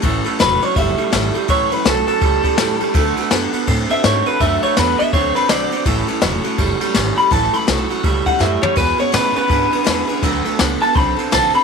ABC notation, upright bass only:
X:1
M:4/4
L:1/8
Q:"Swing" 1/4=165
K:A
V:1 name="Upright bass" clef=bass
A,,, z E,,, z F,,, z G,,, z | A,,, z B,,, z C,, z E,, z | D,, z F,, z A,, z G,, z | F,, z E,, z D,, z B,,, z |
A,,, z E,,, z F,,, z G,,, z | A,,, z B,,, z C,, z F,, z | E,, z B,, z G,, z E,, z | D,, z C,, z B,,, z _B,,, z |]